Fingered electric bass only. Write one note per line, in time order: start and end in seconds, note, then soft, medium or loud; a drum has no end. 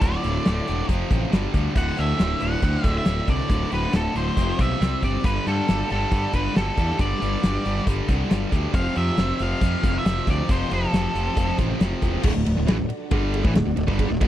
0.02 0.15 D1 medium
0.24 0.37 D1 medium
0.47 0.59 D1 medium
0.69 0.81 E1 medium
0.89 1.02 F1 medium
1.11 1.24 A1 medium
1.33 1.46 G1 medium
1.54 1.67 D2 medium
1.76 1.89 D1 medium
1.99 2.11 D2 medium
2.20 2.33 D1 medium
2.42 2.55 D1 medium
2.63 2.76 D2 medium
2.84 2.97 D1 medium
3.07 3.20 D1 medium
3.28 3.41 C2 medium
3.50 3.63 D1 medium
3.72 3.85 D1 medium
3.94 4.07 D1 medium
4.15 4.28 D1 medium
4.37 4.50 F1 medium
4.59 4.72 B1 medium
4.81 4.94 C2 medium
5.03 5.16 G1 medium
5.24 5.38 G1 medium
5.47 5.60 G2 medium
5.69 5.82 G1 medium
5.91 6.04 G1 medium
6.12 6.25 G2 medium
6.34 6.47 G1 medium
6.57 6.69 G1 medium
6.77 6.91 E2 medium
6.99 7.13 G1 medium
7.22 7.35 G1 medium
7.44 7.56 G1 medium
7.66 7.78 G1 medium
7.87 8.00 G1 medium
8.09 8.22 C2 medium
8.31 8.44 G1 medium
8.52 8.65 D2 medium
8.74 8.87 F1 medium
8.97 9.10 F2 medium
9.18 9.31 F1 medium
9.40 9.53 F1 medium
9.62 9.75 F2 medium
9.84 9.97 F1 medium
10.05 10.19 F1 medium
10.28 10.41 D2 medium
10.50 10.63 F1 medium
10.71 10.84 F1 medium
10.93 11.06 F1 medium
11.15 11.28 F1 medium
11.37 11.50 F1 medium
11.59 11.72 A1 medium
11.80 11.94 F1 medium
12.02 12.16 E1 medium
12.24 12.34 D1 loud
12.36 12.46 D1 medium
12.47 12.57 D1 medium
12.58 12.67 D1 medium
12.68 12.78 A1 medium
12.79 12.89 D1 medium
12.90 muted fingered electric bass stroke soft
13.12 13.42 G1 medium
13.45 13.55 A1 medium
13.56 13.66 D1 medium
13.66 13.76 D1 medium
13.77 13.87 D1 medium
13.88 14.09 G1 medium
14.11 14.21 D1 medium
14.21 14.28 D1 medium